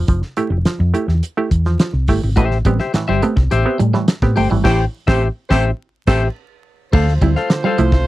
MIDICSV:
0, 0, Header, 1, 9, 480
1, 0, Start_track
1, 0, Tempo, 570342
1, 69, Time_signature, 4, 2, 24, 8
1, 6793, End_track
2, 0, Start_track
2, 0, Title_t, "Clean electric guitar"
2, 0, Program_c, 0, 27
2, 1986, Note_on_c, 0, 67, 84
2, 1994, Note_on_c, 0, 72, 99
2, 2001, Note_on_c, 0, 76, 80
2, 2159, Note_off_c, 0, 67, 0
2, 2163, Note_off_c, 0, 72, 0
2, 2167, Note_off_c, 0, 76, 0
2, 2353, Note_on_c, 0, 76, 55
2, 2360, Note_on_c, 0, 72, 57
2, 2362, Note_on_c, 0, 67, 45
2, 2460, Note_off_c, 0, 67, 0
2, 2462, Note_off_c, 0, 72, 0
2, 2465, Note_off_c, 0, 76, 0
2, 2590, Note_on_c, 0, 76, 91
2, 2600, Note_on_c, 0, 72, 77
2, 2604, Note_on_c, 0, 67, 81
2, 2708, Note_off_c, 0, 67, 0
2, 2714, Note_off_c, 0, 72, 0
2, 2716, Note_off_c, 0, 76, 0
2, 2954, Note_on_c, 0, 67, 84
2, 2959, Note_on_c, 0, 72, 89
2, 2965, Note_on_c, 0, 76, 89
2, 3175, Note_off_c, 0, 67, 0
2, 3178, Note_off_c, 0, 72, 0
2, 3180, Note_off_c, 0, 76, 0
2, 3667, Note_on_c, 0, 67, 61
2, 3678, Note_on_c, 0, 72, 73
2, 3682, Note_on_c, 0, 79, 70
2, 3783, Note_off_c, 0, 79, 0
2, 3784, Note_off_c, 0, 72, 0
2, 3800, Note_off_c, 0, 67, 0
2, 3904, Note_on_c, 0, 67, 99
2, 3911, Note_on_c, 0, 72, 93
2, 3916, Note_on_c, 0, 79, 97
2, 4071, Note_off_c, 0, 67, 0
2, 4075, Note_off_c, 0, 72, 0
2, 4078, Note_off_c, 0, 79, 0
2, 4267, Note_on_c, 0, 76, 97
2, 4275, Note_on_c, 0, 72, 97
2, 4278, Note_on_c, 0, 67, 102
2, 4433, Note_off_c, 0, 76, 0
2, 4438, Note_off_c, 0, 72, 0
2, 4439, Note_off_c, 0, 67, 0
2, 4628, Note_on_c, 0, 67, 98
2, 4634, Note_on_c, 0, 72, 104
2, 4635, Note_on_c, 0, 76, 95
2, 4793, Note_off_c, 0, 67, 0
2, 4797, Note_off_c, 0, 72, 0
2, 4797, Note_off_c, 0, 76, 0
2, 5113, Note_on_c, 0, 76, 109
2, 5119, Note_on_c, 0, 72, 106
2, 5124, Note_on_c, 0, 67, 92
2, 5276, Note_off_c, 0, 76, 0
2, 5279, Note_off_c, 0, 72, 0
2, 5282, Note_off_c, 0, 67, 0
2, 5830, Note_on_c, 0, 69, 79
2, 5836, Note_on_c, 0, 72, 77
2, 5842, Note_on_c, 0, 77, 77
2, 5995, Note_off_c, 0, 69, 0
2, 5999, Note_off_c, 0, 72, 0
2, 6001, Note_off_c, 0, 77, 0
2, 6197, Note_on_c, 0, 77, 63
2, 6204, Note_on_c, 0, 72, 56
2, 6207, Note_on_c, 0, 69, 56
2, 6307, Note_off_c, 0, 69, 0
2, 6317, Note_off_c, 0, 72, 0
2, 6317, Note_off_c, 0, 77, 0
2, 6437, Note_on_c, 0, 77, 86
2, 6446, Note_on_c, 0, 72, 82
2, 6450, Note_on_c, 0, 69, 71
2, 6547, Note_off_c, 0, 69, 0
2, 6549, Note_off_c, 0, 72, 0
2, 6555, Note_off_c, 0, 77, 0
2, 6793, End_track
3, 0, Start_track
3, 0, Title_t, "Horn section"
3, 0, Program_c, 1, 61
3, 3918, Note_on_c, 1, 72, 99
3, 3919, Note_on_c, 1, 67, 106
3, 3920, Note_on_c, 1, 57, 98
3, 4039, Note_off_c, 1, 72, 0
3, 4040, Note_off_c, 1, 57, 0
3, 4040, Note_off_c, 1, 67, 0
3, 4269, Note_on_c, 1, 72, 95
3, 4270, Note_on_c, 1, 67, 103
3, 4271, Note_on_c, 1, 57, 92
3, 4393, Note_off_c, 1, 67, 0
3, 4393, Note_off_c, 1, 72, 0
3, 4394, Note_off_c, 1, 57, 0
3, 4623, Note_on_c, 1, 72, 99
3, 4627, Note_on_c, 1, 57, 105
3, 4627, Note_on_c, 1, 67, 94
3, 4748, Note_off_c, 1, 72, 0
3, 4751, Note_off_c, 1, 57, 0
3, 4751, Note_off_c, 1, 67, 0
3, 5109, Note_on_c, 1, 57, 105
3, 5109, Note_on_c, 1, 72, 99
3, 5113, Note_on_c, 1, 67, 88
3, 5232, Note_off_c, 1, 57, 0
3, 5232, Note_off_c, 1, 72, 0
3, 5235, Note_off_c, 1, 67, 0
3, 5822, Note_on_c, 1, 57, 87
3, 5822, Note_on_c, 1, 72, 97
3, 5824, Note_on_c, 1, 65, 97
3, 6793, Note_off_c, 1, 57, 0
3, 6793, Note_off_c, 1, 65, 0
3, 6793, Note_off_c, 1, 72, 0
3, 6793, End_track
4, 0, Start_track
4, 0, Title_t, "Clav"
4, 0, Program_c, 2, 7
4, 75, Note_on_c, 2, 53, 53
4, 178, Note_off_c, 2, 53, 0
4, 312, Note_on_c, 2, 57, 92
4, 318, Note_on_c, 2, 64, 69
4, 318, Note_on_c, 2, 67, 89
4, 417, Note_off_c, 2, 57, 0
4, 420, Note_off_c, 2, 64, 0
4, 420, Note_off_c, 2, 67, 0
4, 438, Note_on_c, 2, 64, 36
4, 438, Note_on_c, 2, 67, 44
4, 482, Note_off_c, 2, 64, 0
4, 482, Note_off_c, 2, 67, 0
4, 557, Note_on_c, 2, 53, 60
4, 660, Note_off_c, 2, 53, 0
4, 789, Note_on_c, 2, 57, 68
4, 793, Note_on_c, 2, 67, 84
4, 795, Note_on_c, 2, 64, 66
4, 896, Note_off_c, 2, 57, 0
4, 898, Note_off_c, 2, 67, 0
4, 899, Note_off_c, 2, 64, 0
4, 912, Note_on_c, 2, 67, 41
4, 913, Note_on_c, 2, 64, 39
4, 960, Note_off_c, 2, 64, 0
4, 960, Note_off_c, 2, 67, 0
4, 1155, Note_on_c, 2, 57, 78
4, 1156, Note_on_c, 2, 64, 66
4, 1160, Note_on_c, 2, 67, 90
4, 1259, Note_off_c, 2, 57, 0
4, 1260, Note_off_c, 2, 64, 0
4, 1262, Note_off_c, 2, 67, 0
4, 1399, Note_on_c, 2, 53, 59
4, 1501, Note_off_c, 2, 53, 0
4, 1518, Note_on_c, 2, 53, 58
4, 1621, Note_off_c, 2, 53, 0
4, 1759, Note_on_c, 2, 57, 86
4, 1759, Note_on_c, 2, 64, 77
4, 1761, Note_on_c, 2, 67, 94
4, 1861, Note_off_c, 2, 57, 0
4, 1861, Note_off_c, 2, 64, 0
4, 1863, Note_off_c, 2, 67, 0
4, 1881, Note_on_c, 2, 64, 36
4, 1882, Note_on_c, 2, 67, 39
4, 1925, Note_off_c, 2, 64, 0
4, 1925, Note_off_c, 2, 67, 0
4, 1999, Note_on_c, 2, 45, 57
4, 2002, Note_on_c, 2, 52, 60
4, 2102, Note_off_c, 2, 45, 0
4, 2103, Note_off_c, 2, 52, 0
4, 2241, Note_on_c, 2, 59, 83
4, 2243, Note_on_c, 2, 67, 95
4, 2245, Note_on_c, 2, 60, 77
4, 2343, Note_off_c, 2, 59, 0
4, 2344, Note_off_c, 2, 67, 0
4, 2345, Note_off_c, 2, 60, 0
4, 2360, Note_on_c, 2, 67, 46
4, 2361, Note_on_c, 2, 60, 43
4, 2405, Note_off_c, 2, 60, 0
4, 2405, Note_off_c, 2, 67, 0
4, 2482, Note_on_c, 2, 45, 56
4, 2486, Note_on_c, 2, 52, 63
4, 2583, Note_off_c, 2, 45, 0
4, 2585, Note_off_c, 2, 52, 0
4, 2715, Note_on_c, 2, 59, 69
4, 2718, Note_on_c, 2, 60, 74
4, 2719, Note_on_c, 2, 67, 83
4, 2820, Note_off_c, 2, 59, 0
4, 2822, Note_off_c, 2, 60, 0
4, 2822, Note_off_c, 2, 67, 0
4, 2837, Note_on_c, 2, 60, 41
4, 2837, Note_on_c, 2, 67, 44
4, 2883, Note_off_c, 2, 67, 0
4, 2884, Note_off_c, 2, 60, 0
4, 3076, Note_on_c, 2, 59, 77
4, 3078, Note_on_c, 2, 60, 67
4, 3080, Note_on_c, 2, 67, 86
4, 3181, Note_off_c, 2, 59, 0
4, 3181, Note_off_c, 2, 60, 0
4, 3183, Note_off_c, 2, 67, 0
4, 3316, Note_on_c, 2, 45, 63
4, 3318, Note_on_c, 2, 52, 56
4, 3421, Note_off_c, 2, 45, 0
4, 3421, Note_off_c, 2, 52, 0
4, 3557, Note_on_c, 2, 59, 73
4, 3557, Note_on_c, 2, 60, 65
4, 3561, Note_on_c, 2, 67, 83
4, 3661, Note_off_c, 2, 59, 0
4, 3661, Note_off_c, 2, 60, 0
4, 3663, Note_off_c, 2, 67, 0
4, 3799, Note_on_c, 2, 45, 54
4, 3800, Note_on_c, 2, 52, 58
4, 3898, Note_off_c, 2, 52, 0
4, 3902, Note_off_c, 2, 45, 0
4, 3908, Note_on_c, 2, 52, 94
4, 3913, Note_on_c, 2, 45, 97
4, 4074, Note_off_c, 2, 52, 0
4, 4076, Note_off_c, 2, 45, 0
4, 4274, Note_on_c, 2, 60, 92
4, 4278, Note_on_c, 2, 67, 98
4, 4437, Note_off_c, 2, 60, 0
4, 4439, Note_off_c, 2, 67, 0
4, 4638, Note_on_c, 2, 60, 101
4, 4641, Note_on_c, 2, 67, 89
4, 4799, Note_off_c, 2, 60, 0
4, 4801, Note_off_c, 2, 67, 0
4, 5117, Note_on_c, 2, 60, 99
4, 5123, Note_on_c, 2, 67, 97
4, 5278, Note_off_c, 2, 60, 0
4, 5281, Note_off_c, 2, 67, 0
4, 5842, Note_on_c, 2, 50, 57
4, 5942, Note_off_c, 2, 50, 0
4, 6079, Note_on_c, 2, 60, 64
4, 6082, Note_on_c, 2, 64, 78
4, 6180, Note_off_c, 2, 60, 0
4, 6181, Note_off_c, 2, 64, 0
4, 6311, Note_on_c, 2, 50, 59
4, 6416, Note_off_c, 2, 50, 0
4, 6552, Note_on_c, 2, 53, 74
4, 6552, Note_on_c, 2, 60, 66
4, 6557, Note_on_c, 2, 64, 81
4, 6656, Note_off_c, 2, 53, 0
4, 6656, Note_off_c, 2, 60, 0
4, 6658, Note_off_c, 2, 64, 0
4, 6676, Note_on_c, 2, 64, 49
4, 6680, Note_on_c, 2, 60, 39
4, 6720, Note_off_c, 2, 64, 0
4, 6722, Note_off_c, 2, 60, 0
4, 6793, End_track
5, 0, Start_track
5, 0, Title_t, "Clean electric guitar"
5, 0, Program_c, 3, 27
5, 1996, Note_on_c, 3, 57, 92
5, 2093, Note_off_c, 3, 57, 0
5, 2240, Note_on_c, 3, 55, 75
5, 2335, Note_off_c, 3, 55, 0
5, 2598, Note_on_c, 3, 55, 69
5, 2694, Note_off_c, 3, 55, 0
5, 2718, Note_on_c, 3, 57, 82
5, 2814, Note_off_c, 3, 57, 0
5, 3193, Note_on_c, 3, 55, 85
5, 3292, Note_off_c, 3, 55, 0
5, 3315, Note_on_c, 3, 55, 81
5, 3413, Note_off_c, 3, 55, 0
5, 3678, Note_on_c, 3, 57, 99
5, 3774, Note_off_c, 3, 57, 0
5, 3795, Note_on_c, 3, 55, 73
5, 3892, Note_off_c, 3, 55, 0
5, 5838, Note_on_c, 3, 57, 87
5, 5933, Note_off_c, 3, 57, 0
5, 6077, Note_on_c, 3, 55, 80
5, 6172, Note_off_c, 3, 55, 0
5, 6430, Note_on_c, 3, 55, 87
5, 6528, Note_off_c, 3, 55, 0
5, 6553, Note_on_c, 3, 57, 77
5, 6649, Note_off_c, 3, 57, 0
5, 6793, End_track
6, 0, Start_track
6, 0, Title_t, "Fingered electric bass"
6, 0, Program_c, 4, 33
6, 68, Note_on_c, 4, 29, 106
6, 172, Note_off_c, 4, 29, 0
6, 422, Note_on_c, 4, 29, 87
6, 529, Note_off_c, 4, 29, 0
6, 672, Note_on_c, 4, 41, 98
6, 775, Note_off_c, 4, 41, 0
6, 909, Note_on_c, 4, 40, 82
6, 1013, Note_off_c, 4, 40, 0
6, 1273, Note_on_c, 4, 40, 75
6, 1479, Note_off_c, 4, 40, 0
6, 1628, Note_on_c, 4, 36, 75
6, 1733, Note_off_c, 4, 36, 0
6, 1755, Note_on_c, 4, 31, 91
6, 1857, Note_off_c, 4, 31, 0
6, 1879, Note_on_c, 4, 32, 81
6, 1980, Note_off_c, 4, 32, 0
6, 1995, Note_on_c, 4, 33, 103
6, 2200, Note_off_c, 4, 33, 0
6, 2233, Note_on_c, 4, 33, 93
6, 2336, Note_off_c, 4, 33, 0
6, 2600, Note_on_c, 4, 31, 103
6, 2700, Note_off_c, 4, 31, 0
6, 2835, Note_on_c, 4, 36, 90
6, 2938, Note_off_c, 4, 36, 0
6, 2963, Note_on_c, 4, 33, 92
6, 3062, Note_off_c, 4, 33, 0
6, 3199, Note_on_c, 4, 45, 82
6, 3300, Note_off_c, 4, 45, 0
6, 3552, Note_on_c, 4, 45, 77
6, 3656, Note_off_c, 4, 45, 0
6, 3682, Note_on_c, 4, 31, 79
6, 3782, Note_off_c, 4, 31, 0
6, 3797, Note_on_c, 4, 32, 88
6, 3899, Note_off_c, 4, 32, 0
6, 3914, Note_on_c, 4, 33, 95
6, 4077, Note_off_c, 4, 33, 0
6, 4274, Note_on_c, 4, 33, 116
6, 4437, Note_off_c, 4, 33, 0
6, 4636, Note_on_c, 4, 33, 105
6, 4798, Note_off_c, 4, 33, 0
6, 5114, Note_on_c, 4, 33, 91
6, 5276, Note_off_c, 4, 33, 0
6, 5835, Note_on_c, 4, 38, 99
6, 6039, Note_off_c, 4, 38, 0
6, 6072, Note_on_c, 4, 38, 101
6, 6174, Note_off_c, 4, 38, 0
6, 6552, Note_on_c, 4, 36, 82
6, 6756, Note_off_c, 4, 36, 0
6, 6793, End_track
7, 0, Start_track
7, 0, Title_t, "Muted clean electric guitar strokes"
7, 2229, Note_on_c, 9, 29, 49
7, 2314, Note_off_c, 9, 29, 0
7, 2359, Note_on_c, 9, 29, 38
7, 2443, Note_off_c, 9, 29, 0
7, 2470, Note_on_c, 9, 29, 38
7, 2554, Note_off_c, 9, 29, 0
7, 2718, Note_on_c, 9, 29, 53
7, 2802, Note_off_c, 9, 29, 0
7, 2830, Note_on_c, 9, 29, 47
7, 2915, Note_off_c, 9, 29, 0
7, 2962, Note_on_c, 9, 29, 45
7, 3046, Note_off_c, 9, 29, 0
7, 3193, Note_on_c, 9, 29, 45
7, 3277, Note_off_c, 9, 29, 0
7, 3311, Note_on_c, 9, 29, 40
7, 3396, Note_off_c, 9, 29, 0
7, 3433, Note_on_c, 9, 29, 38
7, 3517, Note_off_c, 9, 29, 0
7, 3787, Note_on_c, 9, 29, 50
7, 3871, Note_off_c, 9, 29, 0
7, 6074, Note_on_c, 9, 29, 34
7, 6158, Note_off_c, 9, 29, 0
7, 6202, Note_on_c, 9, 29, 42
7, 6286, Note_off_c, 9, 29, 0
7, 6313, Note_on_c, 9, 29, 44
7, 6397, Note_off_c, 9, 29, 0
7, 6678, Note_on_c, 9, 29, 44
7, 6762, Note_off_c, 9, 29, 0
7, 6793, End_track
8, 0, Start_track
8, 0, Title_t, "Muted fingered electric bass strokes"
8, 549, Note_on_c, 9, 29, 44
8, 633, Note_off_c, 9, 29, 0
8, 2480, Note_on_c, 9, 29, 48
8, 2565, Note_off_c, 9, 29, 0
8, 6793, End_track
9, 0, Start_track
9, 0, Title_t, "Drums"
9, 66, Note_on_c, 9, 42, 74
9, 70, Note_on_c, 9, 36, 104
9, 150, Note_off_c, 9, 42, 0
9, 154, Note_off_c, 9, 36, 0
9, 187, Note_on_c, 9, 38, 29
9, 271, Note_off_c, 9, 38, 0
9, 309, Note_on_c, 9, 42, 66
9, 393, Note_off_c, 9, 42, 0
9, 550, Note_on_c, 9, 42, 72
9, 552, Note_on_c, 9, 38, 88
9, 634, Note_off_c, 9, 42, 0
9, 636, Note_off_c, 9, 38, 0
9, 796, Note_on_c, 9, 42, 70
9, 880, Note_off_c, 9, 42, 0
9, 916, Note_on_c, 9, 38, 34
9, 1000, Note_off_c, 9, 38, 0
9, 1034, Note_on_c, 9, 42, 88
9, 1119, Note_off_c, 9, 42, 0
9, 1272, Note_on_c, 9, 36, 76
9, 1274, Note_on_c, 9, 42, 76
9, 1356, Note_off_c, 9, 36, 0
9, 1358, Note_off_c, 9, 42, 0
9, 1392, Note_on_c, 9, 38, 34
9, 1476, Note_off_c, 9, 38, 0
9, 1510, Note_on_c, 9, 42, 104
9, 1513, Note_on_c, 9, 38, 123
9, 1595, Note_off_c, 9, 42, 0
9, 1597, Note_off_c, 9, 38, 0
9, 1747, Note_on_c, 9, 46, 85
9, 1753, Note_on_c, 9, 36, 84
9, 1754, Note_on_c, 9, 38, 37
9, 1831, Note_off_c, 9, 46, 0
9, 1837, Note_off_c, 9, 36, 0
9, 1838, Note_off_c, 9, 38, 0
9, 1990, Note_on_c, 9, 42, 72
9, 1993, Note_on_c, 9, 36, 105
9, 2074, Note_off_c, 9, 42, 0
9, 2078, Note_off_c, 9, 36, 0
9, 2113, Note_on_c, 9, 38, 33
9, 2197, Note_off_c, 9, 38, 0
9, 2230, Note_on_c, 9, 42, 74
9, 2231, Note_on_c, 9, 36, 88
9, 2314, Note_off_c, 9, 42, 0
9, 2315, Note_off_c, 9, 36, 0
9, 2350, Note_on_c, 9, 38, 38
9, 2434, Note_off_c, 9, 38, 0
9, 2472, Note_on_c, 9, 42, 75
9, 2474, Note_on_c, 9, 38, 87
9, 2557, Note_off_c, 9, 42, 0
9, 2559, Note_off_c, 9, 38, 0
9, 2713, Note_on_c, 9, 42, 65
9, 2797, Note_off_c, 9, 42, 0
9, 2833, Note_on_c, 9, 36, 86
9, 2836, Note_on_c, 9, 38, 31
9, 2918, Note_off_c, 9, 36, 0
9, 2920, Note_off_c, 9, 38, 0
9, 2956, Note_on_c, 9, 42, 87
9, 3041, Note_off_c, 9, 42, 0
9, 3197, Note_on_c, 9, 42, 67
9, 3281, Note_off_c, 9, 42, 0
9, 3315, Note_on_c, 9, 38, 35
9, 3399, Note_off_c, 9, 38, 0
9, 3432, Note_on_c, 9, 42, 99
9, 3435, Note_on_c, 9, 38, 109
9, 3517, Note_off_c, 9, 42, 0
9, 3519, Note_off_c, 9, 38, 0
9, 3553, Note_on_c, 9, 36, 103
9, 3556, Note_on_c, 9, 38, 34
9, 3637, Note_off_c, 9, 36, 0
9, 3640, Note_off_c, 9, 38, 0
9, 3673, Note_on_c, 9, 46, 82
9, 3757, Note_off_c, 9, 46, 0
9, 3913, Note_on_c, 9, 36, 103
9, 3913, Note_on_c, 9, 49, 93
9, 3916, Note_on_c, 9, 38, 98
9, 3997, Note_off_c, 9, 36, 0
9, 3997, Note_off_c, 9, 49, 0
9, 4000, Note_off_c, 9, 38, 0
9, 4273, Note_on_c, 9, 36, 113
9, 4275, Note_on_c, 9, 38, 111
9, 4357, Note_off_c, 9, 36, 0
9, 4359, Note_off_c, 9, 38, 0
9, 4633, Note_on_c, 9, 36, 87
9, 4634, Note_on_c, 9, 38, 97
9, 4717, Note_off_c, 9, 36, 0
9, 4718, Note_off_c, 9, 38, 0
9, 5113, Note_on_c, 9, 36, 108
9, 5113, Note_on_c, 9, 49, 66
9, 5117, Note_on_c, 9, 38, 108
9, 5197, Note_off_c, 9, 36, 0
9, 5198, Note_off_c, 9, 49, 0
9, 5201, Note_off_c, 9, 38, 0
9, 5833, Note_on_c, 9, 49, 100
9, 5834, Note_on_c, 9, 36, 123
9, 5918, Note_off_c, 9, 36, 0
9, 5918, Note_off_c, 9, 49, 0
9, 5957, Note_on_c, 9, 38, 37
9, 6041, Note_off_c, 9, 38, 0
9, 6071, Note_on_c, 9, 36, 78
9, 6072, Note_on_c, 9, 42, 68
9, 6155, Note_off_c, 9, 36, 0
9, 6156, Note_off_c, 9, 42, 0
9, 6193, Note_on_c, 9, 38, 41
9, 6277, Note_off_c, 9, 38, 0
9, 6311, Note_on_c, 9, 42, 73
9, 6313, Note_on_c, 9, 38, 96
9, 6395, Note_off_c, 9, 42, 0
9, 6397, Note_off_c, 9, 38, 0
9, 6550, Note_on_c, 9, 42, 71
9, 6635, Note_off_c, 9, 42, 0
9, 6668, Note_on_c, 9, 36, 82
9, 6670, Note_on_c, 9, 38, 35
9, 6752, Note_off_c, 9, 36, 0
9, 6754, Note_off_c, 9, 38, 0
9, 6793, End_track
0, 0, End_of_file